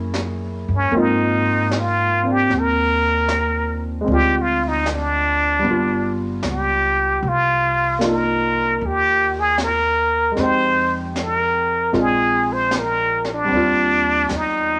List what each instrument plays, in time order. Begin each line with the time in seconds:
Already playing: upright bass F#2, grand piano A#3 C#4 E4 G#4
0.14 snare, hi-hat pedal
0.68 upright bass G2
0.75 muted trumpet C#4
0.91 upright bass G#2, grand piano A#3 C4, brush sweep
0.95 grand piano D#4 F4
1.00 muted trumpet D#4
1.71 snare, hi-hat pedal
1.79 muted trumpet F4
2.23 grand piano C4 D4
2.32 muted trumpet G4
2.50 upright bass D#2, brush sweep, snare
2.59 muted trumpet A#4
3.28 snare, hi-hat pedal
4.01 grand piano G#3 C4
4.07 upright bass D2, grand piano D4, brush sweep
4.12 grand piano F4, muted trumpet G4
4.42 muted trumpet F4
4.68 muted trumpet D#4
4.86 snare, hi-hat pedal
4.93 muted trumpet D4
5.59 grand piano G3 B3
5.65 upright bass G1, grand piano D4, brush sweep
5.70 grand piano F4
6.43 upright bass C#2, snare, hi-hat pedal
6.49 muted trumpet G4
7.22 upright bass C2, brush sweep
7.28 muted trumpet F4
7.99 grand piano A#3 D4 D#4, snare, hi-hat pedal
8.04 grand piano F4, muted trumpet A#4
8.80 upright bass D#2, brush sweep
8.86 muted trumpet G4
9.39 muted trumpet G#4
9.58 snare, hi-hat pedal
9.63 muted trumpet A#4
10.32 grand piano G#3 C4
10.37 upright bass F2, grand piano D#4, muted trumpet C5, brush sweep, snare
10.43 grand piano G4
11.16 snare, hi-hat pedal
11.23 muted trumpet A#4
11.93 upright bass A#1, grand piano G#3 C4 D4 F4, brush sweep, snare
12.01 muted trumpet G#4
12.53 muted trumpet C5
12.71 snare, hi-hat pedal
12.79 muted trumpet A#4
13.25 snare
13.33 muted trumpet D4
13.45 grand piano G3 C4
13.50 upright bass D#2, grand piano D5, brush sweep
13.56 grand piano F4
14.29 upright bass E2, snare, hi-hat pedal
14.36 muted trumpet D#4